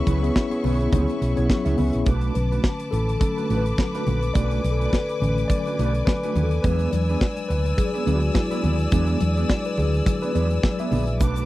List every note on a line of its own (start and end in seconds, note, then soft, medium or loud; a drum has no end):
0.00 0.22 B3 medium
0.00 0.22 C#4 medium
0.00 0.23 E4 medium
0.00 0.23 G#4 medium
0.00 2.03 B4 medium
0.00 0.23 C#5 medium
0.00 1.78 E5 medium
0.00 2.03 E5 medium
0.00 2.03 C#6 medium
0.07 0.29 C#2 medium
0.07 0.19 B3 medium
0.07 0.19 E4 medium
0.07 0.20 G#4 medium
0.07 0.20 C#5 medium
0.07 kick medium
0.07 closed hi-hat medium
0.07 high conga medium
0.22 0.48 B3 medium
0.22 0.33 B3 soft
0.22 0.48 C#4 medium
0.22 0.48 E4 medium
0.22 0.33 E4 medium
0.22 0.48 G#4 medium
0.22 0.33 G#4 medium
0.22 0.32 C#5 medium
0.22 0.49 C#5 medium
0.22 closed hi-hat soft
0.36 kick loud
0.36 snare loud
0.36 muted conga soft
0.50 0.88 B3 medium
0.50 0.88 C#4 medium
0.50 0.89 E4 medium
0.50 0.89 G#4 medium
0.50 0.89 C#5 medium
0.50 muted clean electric guitar stroke soft
0.50 closed hi-hat soft
0.50 muted conga soft
0.64 0.86 B1 medium
0.64 0.79 B3 medium
0.64 0.80 E4 medium
0.64 0.80 G#4 medium
0.64 0.79 C#5 medium
0.64 open hi-hat medium
0.64 low conga medium
0.80 0.91 B3 soft
0.80 0.90 E4 medium
0.80 0.90 G#4 medium
0.80 0.90 C#5 medium
0.80 closed hi-hat soft
0.92 1.05 C#2 loud
0.92 1.32 B3 medium
0.92 1.14 B3 medium
0.92 1.32 C#4 medium
0.92 1.32 E4 medium
0.92 1.09 E4 medium
0.92 1.32 G#4 medium
0.92 1.08 G#4 medium
0.92 1.33 C#5 medium
0.92 1.08 C#5 medium
0.92 kick loud
0.92 closed hi-hat medium
0.92 muted conga soft
0.92 high conga medium
0.92 low conga medium
1.08 muted clean electric guitar stroke soft
1.08 closed hi-hat soft
1.08 muted conga soft
1.21 1.34 B1 medium
1.21 muted clean electric guitar stroke soft
1.21 closed hi-hat medium
1.21 high conga soft
1.36 1.47 B1 medium
1.36 1.74 B3 medium
1.36 1.47 B3 soft
1.36 1.74 C#4 medium
1.36 1.74 E4 medium
1.36 1.47 E4 soft
1.36 1.74 G#4 medium
1.36 1.47 G#4 medium
1.36 1.75 C#5 loud
1.36 1.47 C#5 medium
1.36 closed hi-hat soft
1.50 kick loud
1.50 snare loud
1.50 muted conga soft
1.50 high conga medium
1.65 1.76 C#2 loud
1.65 1.77 B3 medium
1.65 1.77 E4 medium
1.65 1.78 G#4 medium
1.65 1.77 E5 medium
1.65 snare soft
1.65 closed hi-hat medium
1.77 1.91 C#2 medium
1.77 2.04 B3 medium
1.77 1.90 B3 medium
1.77 2.04 C#4 medium
1.77 2.04 E4 medium
1.77 1.90 E4 medium
1.77 2.04 G#4 medium
1.77 1.91 G#4 medium
1.77 1.91 C#5 medium
1.77 2.04 E5 medium
1.77 open hi-hat medium
1.77 high conga medium
1.77 low conga medium
1.93 2.04 A#1 medium
1.93 muted clean electric guitar stroke soft
1.93 closed hi-hat soft
2.06 2.29 B1 medium
2.06 2.33 A3 medium
2.06 2.33 D4 medium
2.06 2.34 F#4 medium
2.06 2.34 B4 medium
2.06 6.61 B4 medium
2.06 4.34 A5 medium
2.06 6.60 D6 medium
2.06 kick loud
2.06 closed hi-hat medium
2.21 closed hi-hat soft
2.21 muted conga soft
2.34 2.57 B1 medium
2.34 3.16 D3 soft
2.34 3.17 A3 soft
2.34 3.17 C#4 medium
2.34 2.88 B4 medium
2.34 closed hi-hat medium
2.34 high conga medium
2.52 2.62 A3 soft
2.52 2.61 D4 medium
2.52 2.61 F#4 medium
2.52 2.61 B4 medium
2.52 closed hi-hat soft
2.64 kick loud
2.64 snare loud
2.64 muted conga soft
2.79 muted clean electric guitar stroke soft
2.79 closed hi-hat soft
2.79 muted conga soft
2.91 3.15 A1 medium
2.91 3.04 A4 medium
2.91 closed hi-hat medium
2.91 low conga medium
3.08 muted clean electric guitar stroke soft
3.08 closed hi-hat soft
3.20 3.46 D3 soft
3.20 3.46 A3 soft
3.20 3.47 C#4 medium
3.20 3.60 A4 medium
3.20 muted clean electric guitar stroke soft
3.20 kick loud
3.20 closed hi-hat medium
3.20 muted conga soft
3.20 high conga medium
3.37 3.47 A3 soft
3.37 3.47 D4 medium
3.37 3.47 F#4 medium
3.37 3.46 B4 medium
3.37 closed hi-hat soft
3.49 3.72 A1 medium
3.49 3.65 A3 medium
3.49 3.65 D4 medium
3.49 3.65 F#4 medium
3.49 3.64 B4 medium
3.49 closed hi-hat medium
3.49 high conga soft
3.57 3.94 B4 medium
3.66 muted clean electric guitar stroke soft
3.66 closed hi-hat soft
3.78 kick loud
3.78 snare loud
3.78 muted conga soft
3.78 high conga medium
3.94 4.05 A3 medium
3.94 4.06 D4 medium
3.94 4.06 F#4 medium
3.94 4.06 B4 medium
3.94 4.32 B4 medium
3.94 snare soft
3.94 closed hi-hat medium
3.94 muted conga soft
4.06 4.29 A#1 loud
4.06 4.18 A3 medium
4.06 4.19 D4 medium
4.06 4.19 F#4 medium
4.06 4.20 B4 medium
4.06 closed hi-hat medium
4.06 high conga medium
4.06 low conga medium
4.22 muted clean electric guitar stroke soft
4.22 closed hi-hat soft
4.34 4.57 B1 loud
4.34 4.62 A3 medium
4.34 4.62 D4 medium
4.34 4.62 F#4 medium
4.34 4.63 B4 medium
4.34 4.54 D5 loud
4.34 11.17 G#5 medium
4.34 kick loud
4.34 closed hi-hat medium
4.34 muted conga soft
4.51 4.71 B4 medium
4.51 closed hi-hat soft
4.64 4.86 B1 loud
4.64 muted clean electric guitar stroke soft
4.64 closed hi-hat medium
4.64 high conga medium
4.71 4.78 A4 medium
4.80 4.90 A3 soft
4.80 4.90 D4 medium
4.80 4.90 F#4 medium
4.80 4.89 B4 medium
4.80 closed hi-hat soft
4.86 4.92 D5 medium
4.91 5.27 B4 medium
4.91 kick medium
4.91 snare loud
4.91 muted conga soft
5.09 muted clean electric guitar stroke soft
5.09 closed hi-hat soft
5.20 5.43 A1 medium
5.20 5.60 D3 medium
5.20 5.60 A3 soft
5.20 5.61 C#4 medium
5.20 closed hi-hat medium
5.20 low conga medium
5.29 5.38 B4 medium
5.37 muted clean electric guitar stroke soft
5.37 closed hi-hat soft
5.48 5.85 D5 loud
5.48 muted clean electric guitar stroke soft
5.48 kick loud
5.48 closed hi-hat medium
5.48 muted conga soft
5.48 high conga medium
5.66 5.76 A3 soft
5.66 5.76 D4 medium
5.66 5.76 F#4 medium
5.66 5.75 B4 medium
5.66 closed hi-hat soft
5.66 muted conga soft
5.79 6.01 B1 medium
5.79 5.94 A3 medium
5.79 5.94 D4 medium
5.79 5.95 F#4 medium
5.79 5.94 B4 medium
5.79 closed hi-hat medium
5.79 high conga soft
5.86 6.07 D5 medium
5.94 muted clean electric guitar stroke medium
5.94 closed hi-hat soft
6.05 6.45 B4 loud
6.05 muted clean electric guitar stroke soft
6.05 kick loud
6.05 snare loud
6.05 muted conga soft
6.05 high conga medium
6.23 6.35 A3 medium
6.23 6.36 D4 medium
6.23 6.36 F#4 medium
6.23 6.35 B4 medium
6.23 closed hi-hat medium
6.23 muted conga soft
6.35 6.58 D#2 medium
6.35 6.48 A3 medium
6.35 6.48 D4 medium
6.35 6.48 F#4 medium
6.35 6.49 B4 medium
6.35 closed hi-hat medium
6.35 high conga medium
6.35 low conga medium
6.43 6.62 A4 medium
6.51 muted clean electric guitar stroke soft
6.51 closed hi-hat soft
6.62 6.86 E2 loud
6.62 8.05 F#3 medium
6.62 8.06 G#3 medium
6.62 6.91 B3 medium
6.62 8.06 D4 medium
6.62 6.91 D4 medium
6.62 6.91 G#4 loud
6.62 6.93 B4 medium
6.62 6.92 B4 medium
6.62 11.16 D5 medium
6.62 11.16 E6 medium
6.62 kick loud
6.62 closed hi-hat medium
6.62 muted conga soft
6.79 closed hi-hat soft
6.79 muted conga soft
6.91 7.15 E2 medium
6.91 7.51 D5 medium
6.91 closed hi-hat medium
6.91 high conga medium
7.09 7.19 B3 medium
7.09 7.19 D4 medium
7.09 7.19 G#4 medium
7.09 7.18 B4 medium
7.09 closed hi-hat soft
7.21 kick loud
7.21 snare loud
7.21 muted conga soft
7.37 muted clean electric guitar stroke soft
7.37 closed hi-hat soft
7.37 muted conga soft
7.48 7.72 D2 medium
7.48 7.61 B4 medium
7.48 closed hi-hat medium
7.48 low conga medium
7.66 muted clean electric guitar stroke soft
7.66 closed hi-hat soft
7.77 8.11 G#4 medium
7.77 muted clean electric guitar stroke soft
7.77 kick loud
7.77 closed hi-hat medium
7.77 high conga medium
7.94 8.04 B3 medium
7.94 8.04 D4 medium
7.94 8.04 G#4 medium
7.94 8.04 B4 medium
7.94 closed hi-hat soft
7.94 muted conga soft
8.06 8.29 D2 medium
8.06 8.32 F#3 soft
8.06 8.32 G#3 soft
8.06 8.21 B3 medium
8.06 8.22 D4 medium
8.06 8.33 D4 soft
8.06 8.21 G#4 medium
8.06 8.21 B4 medium
8.06 closed hi-hat medium
8.06 high conga soft
8.12 8.36 F#4 medium
8.12 8.16 G#4 medium
8.22 muted clean electric guitar stroke soft
8.22 closed hi-hat soft
8.35 8.88 E4 medium
8.35 kick loud
8.35 snare loud
8.35 muted conga soft
8.35 high conga medium
8.51 8.62 B3 medium
8.51 8.63 D4 medium
8.51 8.63 G#4 medium
8.51 8.63 B4 medium
8.51 closed hi-hat medium
8.51 muted conga soft
8.63 8.86 D#2 medium
8.63 8.75 B3 medium
8.63 8.76 D4 medium
8.63 8.76 G#4 medium
8.63 8.76 B4 medium
8.63 closed hi-hat medium
8.63 high conga medium
8.63 low conga medium
8.79 muted clean electric guitar stroke soft
8.79 closed hi-hat soft
8.91 9.14 E2 loud
8.91 9.74 F#3 medium
8.91 9.74 G#3 soft
8.91 9.19 B3 medium
8.91 9.19 D4 loud
8.91 9.74 D4 medium
8.91 9.19 G#4 loud
8.91 9.20 B4 medium
8.91 kick loud
8.91 closed hi-hat medium
8.91 muted conga soft
9.07 closed hi-hat soft
9.07 muted conga soft
9.20 9.43 E2 medium
9.20 9.62 D5 medium
9.20 closed hi-hat medium
9.20 high conga medium
9.37 9.47 B3 medium
9.37 9.47 D4 medium
9.37 9.46 G#4 medium
9.37 9.46 B4 medium
9.37 closed hi-hat soft
9.49 muted clean electric guitar stroke soft
9.49 kick loud
9.49 snare loud
9.65 9.72 B4 medium
9.65 muted clean electric guitar stroke soft
9.65 closed hi-hat soft
9.65 muted conga soft
9.78 10.00 D2 medium
9.78 10.24 G#4 medium
9.78 closed hi-hat medium
9.78 low conga medium
9.94 muted clean electric guitar stroke soft
9.94 closed hi-hat soft
10.06 muted clean electric guitar stroke soft
10.06 kick loud
10.06 closed hi-hat medium
10.06 muted conga soft
10.06 high conga medium
10.06 low conga medium
10.22 10.32 B3 soft
10.22 10.32 D4 medium
10.22 10.32 G#4 medium
10.22 10.32 B4 medium
10.22 10.28 B4 loud
10.22 closed hi-hat soft
10.22 muted conga soft
10.34 10.57 E2 medium
10.34 10.50 B3 medium
10.34 10.50 D4 medium
10.34 10.50 G#4 medium
10.34 10.49 B4 medium
10.34 10.81 D5 medium
10.34 closed hi-hat medium
10.34 high conga soft
10.51 muted clean electric guitar stroke soft
10.51 closed hi-hat soft
10.63 muted clean electric guitar stroke soft
10.63 kick loud
10.63 snare loud
10.63 high conga medium
10.79 10.90 B3 medium
10.79 10.91 D4 medium
10.79 10.91 G#4 medium
10.79 10.91 B4 medium
10.79 11.06 E5 medium
10.79 closed hi-hat medium
10.91 11.21 A#1 medium
10.91 11.03 B3 medium
10.91 11.04 D4 medium
10.91 11.04 G#4 medium
10.91 11.04 B4 medium
10.91 open hi-hat medium
10.91 high conga medium
10.91 low conga medium
11.07 muted clean electric guitar stroke soft
11.07 closed hi-hat soft
11.20 11.43 B1 loud
11.20 11.45 A3 medium
11.20 11.45 D4 medium
11.20 11.45 F#4 medium
11.20 11.45 B4 medium
11.20 11.45 A5 medium
11.20 11.45 D6 medium
11.20 kick loud
11.20 closed hi-hat medium
11.20 muted conga soft
11.20 shaker medium
11.36 closed hi-hat soft
11.36 muted conga soft
11.36 shaker medium